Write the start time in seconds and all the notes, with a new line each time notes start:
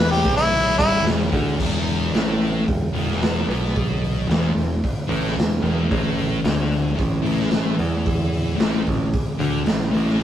Already playing: E2
0.00 E1
0.11 G4
0.24 B1 B2, kick, open hi-hat
0.37 E4
0.52 open hi-hat
0.76 G1 G2 E4, kick, open hi-hat
0.95 snare
1.03 E1 E2, open hi-hat
1.07 snare
1.30 D2 D3, kick, open hi-hat
1.48 snare
1.58 E1 E2, kick, crash
1.87 open hi-hat
2.12 A1 A2, snare, open hi-hat
2.42 open hi-hat
2.65 E1 E2, kick, open hi-hat
2.93 E1 E2, open hi-hat
3.11 snare
3.22 snare, open hi-hat
3.47 B1 B2, open hi-hat
3.64 snare
3.76 kick, open hi-hat
4.04 open hi-hat
4.27 E1 E2, snare, open hi-hat
4.54 E1 E2, open hi-hat
4.84 kick, open hi-hat
5.08 A1 A2, open hi-hat
5.26 snare
5.35 E1 E2, open hi-hat
5.40 snare
5.62 E1 E2, open hi-hat
5.87 A2
5.91 A1, kick, open hi-hat
6.19 open hi-hat
6.41 D2 D3, open hi-hat
6.46 snare
6.72 open hi-hat
6.95 A2, kick, open hi-hat
7.00 A1
7.22 A2
7.26 A1, open hi-hat
7.39 snare
7.51 snare, open hi-hat
7.76 E2 E3, open hi-hat
8.06 kick, open hi-hat
8.34 open hi-hat
8.56 A2, open hi-hat
8.60 A1, snare
8.83 A2, kick, open hi-hat
8.88 A1
9.13 kick, open hi-hat
9.38 D2 D3, open hi-hat
9.64 A1 A2, snare, open hi-hat
9.91 A2, open hi-hat
9.95 A1
10.09 snare